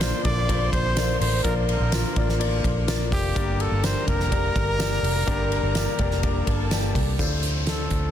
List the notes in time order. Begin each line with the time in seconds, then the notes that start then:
Already playing: A#1 D3 F3 A#3 F4 C5 D5 C6
0.00 A#3 D4 F4 A#4 D5, snare, ride, tambourine
0.24 A#1 A#3 D4 F4 A#4 D5, kick, ride
0.48 A#3 D4 F4 A#4 D5, kick, ride
0.72 A#1 C5, kick, ride
0.97 A#3 D4 F4 A#4 D5, snare, ride, tambourine
1.20 A1 C5, open hi-hat, ride
1.43 A#1 A#3 D4 F4 A#4 D5, kick, hi-hat pedal, ride
1.67 A#4, ride
1.80 A#1
1.92 A#3 D4 F4 A#4 D5, snare, ride, tambourine
2.16 A1 A#3 D4 F4 A#4 D5, kick, ride
2.29 snare
2.39 A#3 D4 F4 A#4 D5, ride
2.64 A#1, kick, ride
2.87 A#3 D4 F4 A#4 D5, snare, ride, tambourine
3.12 F1 G4, kick, open hi-hat, ride
3.35 G1 G2 D3 G3 A#3 D4 G4 A#4 D5 A#5, kick, hi-hat pedal, ride
3.60 A4, ride
3.71 G1
3.83 A#3 D4 G4 A#4 C5 D5, snare, ride, tambourine
4.07 F1 A#3 D4 G4 A#4 D5, kick, ride
4.20 snare
4.30 A#3 D4 G4 A#4 D5, kick, ride
4.56 G1, kick, ride
4.79 A#3 D4 G4 A#4 D5, snare, ride, tambourine
5.03 F1, open hi-hat, ride
5.26 G1 G2 D3 A#3 D4 G4 A#4 D5, kick, hi-hat pedal, ride
5.52 ride
5.63 G1
5.75 A#3 D4 G4 A#4 D5, snare, ride, tambourine
5.99 F1 A#3 D4 G4 A#4 D5, kick, ride
6.11 snare
6.23 A#3 D4 G4 A#4 D5, kick, ride
6.47 G1 A4 A5, kick, ride
6.71 A#3 D4 G4 A#4 D5, snare, ride, tambourine
6.95 C2, kick, open hi-hat, ride
7.18 D2 A2 C3 F3 A3 D4 F4 A4 C5, kick, closed hi-hat, downlifter
7.43 closed hi-hat
7.66 D4 F4 A4 C5, snare, closed hi-hat
7.90 D2, kick, closed hi-hat